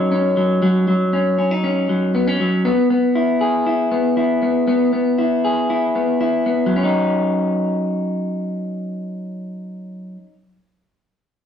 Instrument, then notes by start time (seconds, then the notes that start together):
clean electric guitar
Already playing: F#3 C#4 D#4
0.12 C#4
0.37 F#3
0.62 F#3
0.88 F#3
1.13 C#4
1.38 C#4
1.51 D#4
1.64 C#4
1.89 F#3
2.15 B3
2.27 C#4
2.40 F#3
2.65 B3
2.90 B3
3.15 E4
3.41 G#4
3.67 E4
3.92 B3
4.17 E4
4.42 B3
4.68 B3
4.93 B3
5.18 E4
5.45 G#4
5.70 E4
5.95 B3
6.21 E4
6.46 B3
6.66 F#3
6.76 C#4
6.83 D#4